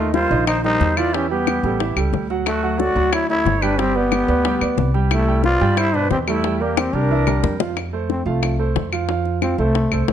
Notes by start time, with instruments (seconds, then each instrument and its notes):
Already playing: upright bass D#2, grand piano D#3 D#4 D#5, trombone A3, flute F4
0.14 grand piano G3 G4 A#4, trombone F4, flute C5, high bongo
0.31 upright bass A#1, grand piano D#3 D#4 D#5, high bongo
0.47 trombone D#4, flute C5, high bongo, claves
0.64 grand piano G3 G4 A#4, trombone D#4, flute C5, high bongo
0.80 upright bass E2, high bongo, low bongo
0.97 grand piano E3 E4 E5, trombone F4, flute D5, high bongo, claves
1.14 grand piano E3 E4 E5, trombone C#4, flute G4, high bongo
1.30 grand piano G3 G4 B4, trombone B3, flute G4
1.47 high bongo, claves
1.63 upright bass A1, grand piano G3 G4 A4, high bongo
1.80 grand piano E3 E4 E5, high bongo
1.96 upright bass C#2, grand piano G3 G4 A4, high bongo, claves
2.13 upright bass D2, high bongo, low bongo
2.30 grand piano F#3 F#4 F#5, high bongo
2.46 trombone A3, flute F#4, high bongo, claves
2.63 grand piano F#3 F#4 F#5
2.79 grand piano A3 A4 C#5, trombone F#4, flute D5, high bongo
2.96 upright bass D2, grand piano F#3 F#4 F#5, high bongo
3.12 trombone E4, flute C#5, high bongo, claves
3.29 grand piano A3 A4 C#5, trombone E4, flute C#5, high bongo
3.45 upright bass G1, high bongo, low bongo
3.62 grand piano G3 G4 G5, trombone D4, flute B4, high bongo, claves
3.79 grand piano G3 G4 G5, trombone C4, flute G4, high bongo
3.95 grand piano B3 B4 D5, trombone B3, flute G4
4.12 high bongo, claves
4.28 upright bass D2, grand piano B3 B4 D5, high bongo
4.45 grand piano G3 G4 G5, high bongo
4.61 upright bass D2, grand piano B3 B4 D5, high bongo, claves
4.77 upright bass C2, high bongo, low bongo
4.94 grand piano G3 G4 G5, high bongo
5.11 trombone A3, flute E4, high bongo, claves
5.28 grand piano G3 G4 G5
5.44 grand piano B3 B4 C5, trombone F4, flute D5, high bongo
5.61 upright bass G2, grand piano G3 G4 G5, high bongo
5.77 trombone E4, flute C5, high bongo, claves
5.94 grand piano B2 B4 C5, trombone D4, flute B4, high bongo
6.11 upright bass E2, trombone C4, flute G4, high bongo, low bongo
6.27 grand piano G3 G4 G5, trombone A3, flute E4, high bongo, claves
6.44 grand piano G3 G4 G5, high bongo
6.61 grand piano A#3 A#4 D5, trombone A#3, flute G4
6.77 trombone C4, flute G4, high bongo, claves
6.93 upright bass C2, grand piano G3 G4 A#4, trombone D4, flute A#4
7.11 grand piano E3 E4 E5
7.27 grand piano G3 G4 A#4, low bongo, claves
7.43 upright bass F2, low bongo
7.60 grand piano F3 F4 F5, low bongo
7.77 high bongo, claves
7.93 grand piano A3 A4 C5
8.10 trombone C4, high bongo
8.26 upright bass C2, grand piano F3 F4 F5, trombone A3
8.43 high bongo, claves
8.59 grand piano A3 A4 C5
8.76 upright bass F2, high bongo, low bongo
8.92 grand piano F3 F4 F5, claves
9.09 grand piano F3 F4 F5, high bongo
9.25 high bongo
9.42 grand piano F3 F4 F5, trombone C4, high bongo, claves
9.58 upright bass C2, grand piano A3 A4 C5, trombone A3, high bongo
9.75 high bongo
9.92 upright bass C2, grand piano A3 A4 C5, claves
10.08 upright bass A#1, high bongo, low bongo